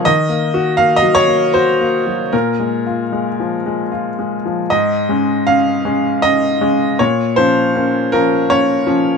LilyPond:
<<
  \new Staff \with { instrumentName = "Upright piano" } { \time 3/4 \key bes \minor \tempo 4 = 79 ees''4 f''16 ees''16 des''8 c''4 | bes'2 r4 | ees''4 f''4 ees''4 | des''8 c''4 bes'8 des''4 | }
  \new Staff \with { instrumentName = "Upright piano" } { \time 3/4 \key bes \minor \tuplet 3/2 { ees8 bes8 ges'8 bes8 ges8 bes8 ges'8 bes8 ges8 } | \tuplet 3/2 { bes,8 aes8 f'8 aes8 f8 aes8 f'8 aes8 f8 } | aes,8 <aes des'>8 des'8 <aes des'>8 des'8 <aes des'>8 | bes,8 <f des'>8 <bes des'>8 <f des'>8 <bes des'>8 <f des'>8 | }
>>